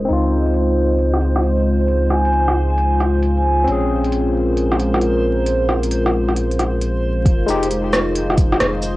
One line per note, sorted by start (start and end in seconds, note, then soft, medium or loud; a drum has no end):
0.00 7.26 G#3 medium
0.00 1.46 D#4 medium
0.00 0.98 A#4 medium
0.00 7.25 C5 medium
0.00 4.74 D#5 medium
0.05 3.63 C4 medium
0.05 3.65 D#4 medium
0.09 3.66 C#2 medium
0.09 3.67 F4 medium
0.09 closed hi-hat soft
0.32 8.97 C5 medium
0.46 closed hi-hat soft
0.52 8.97 F4 medium
0.52 closed hi-hat soft
0.99 closed hi-hat soft
1.14 cross-stick soft
1.21 closed hi-hat soft
1.36 cross-stick medium
1.43 closed hi-hat soft
1.88 closed hi-hat soft
2.10 2.20 G#5 medium
2.10 cross-stick soft
2.25 2.31 G#5 medium
2.25 closed hi-hat soft
2.33 closed hi-hat soft
2.48 cross-stick medium
2.70 2.93 G#5 medium
2.78 closed hi-hat soft
3.00 cross-stick soft
3.00 closed hi-hat soft
3.22 closed hi-hat soft
3.37 3.67 G#5 medium
3.64 7.24 A#1 medium
3.64 7.22 C4 medium
3.64 7.24 C#4 medium
3.64 closed hi-hat soft
3.72 7.26 G#4 medium
3.89 8.51 A#4 medium
4.04 closed hi-hat soft
4.12 closed hi-hat medium
4.57 closed hi-hat soft
4.72 cross-stick soft
4.80 closed hi-hat soft
4.94 cross-stick medium
5.01 closed hi-hat soft
5.46 closed hi-hat medium
5.69 cross-stick soft
5.83 closed hi-hat medium
5.91 closed hi-hat medium
6.06 cross-stick medium
6.29 cross-stick soft
6.37 closed hi-hat medium
6.51 closed hi-hat soft
6.59 cross-stick soft
6.59 closed hi-hat soft
6.81 closed hi-hat soft
7.26 8.59 F1 loud
7.26 8.97 G#3 medium
7.26 8.97 C5 medium
7.26 kick loud
7.26 closed hi-hat medium
7.35 8.97 D#4 medium
7.46 7.65 G#3 medium
7.46 7.67 D#4 medium
7.46 7.67 G4 medium
7.46 cabasa medium
7.63 closed hi-hat medium
7.71 closed hi-hat medium
7.93 cross-stick loud
7.93 cabasa medium
8.15 8.97 D#5 medium
8.15 closed hi-hat medium
8.30 cross-stick medium
8.37 kick loud
8.37 closed hi-hat medium
8.37 cabasa medium
8.52 cross-stick medium
8.60 8.97 F1 loud
8.60 cross-stick loud
8.60 closed hi-hat medium
8.82 cabasa medium